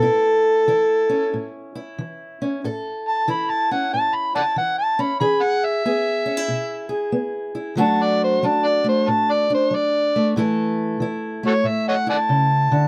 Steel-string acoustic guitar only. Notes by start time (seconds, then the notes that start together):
Already playing: A3
0.02 A2 E4
0.68 E3 E4
1.09 C#4
1.33 A2
1.75 E4
1.98 E3
2.42 C#4
2.64 A2 A4
3.28 E3 E4
3.71 C#4
3.93 A2
4.36 E4
4.56 E3
4.99 C#4
5.20 E3 G#4
5.85 B3 G#4
6.26 C#4
6.37 E4
6.48 B2
6.89 G#4
7.12 B3
7.55 E4
7.75 D3 F#3 A3 D4 F#4
8.43 F#3 D4
8.84 A3
9.08 A2
9.50 D4
9.71 F#3
10.16 A3
10.36 A2 E3 A3 E4 A4
11.00 E3 E4
11.43 A3
11.64 A2
12.07 E4
12.29 C#3
12.71 D3